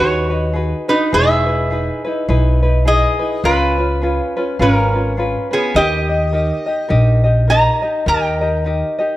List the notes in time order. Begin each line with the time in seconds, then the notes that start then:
Already playing: D#2 D#4 F#4 G#4 B4
0.00 F#4 C#5
0.30 D#4 F#4 B4
0.53 D#4 F#4 G#4 B4
0.88 D#4 F#4 B4
1.12 E1 D#4 E4 G#4 B4 E5
1.46 D#4 E4 B4
1.70 D#4 E4 G#4 B4
2.05 D#4 E4 B4
2.28 B1 D#4 E4 G#4 B4
2.63 D#4 E4 B4
2.85 D#4 E4 G#4 B4 D#5
3.19 D#4 E4 B4
3.44 C#2 C#4 F4 G#4 B4
3.78 C#4 F4 B4
4.02 C#4 F4 G#4 B4
4.37 C#4 F4 B4
4.59 G#1 C#4 F4 G#4 A#4 B4
4.93 C#4 F4 B4
5.17 C#4 F4 G#4 B4
5.51 B3 C#4 F4 G#4 B4
5.75 D#2 D#4 G4 A#4 D#5
6.09 D#4 G4 D#5
6.33 D#4 G4 A#4 D#5
6.66 D#4 G4 D#5
6.89 A#1 D#4 G4 A#4 D#5
7.24 D#4 G4 D#5
7.48 D#4 G4 A#4 D#5 A#5
7.82 D#4 G4 D#5
8.06 D#2 D#4 G4 A#4 D#5 G5
8.41 D#4 G4 D#5
8.64 D#4 G4 A#4 D#5
8.99 D#4 G4 D#5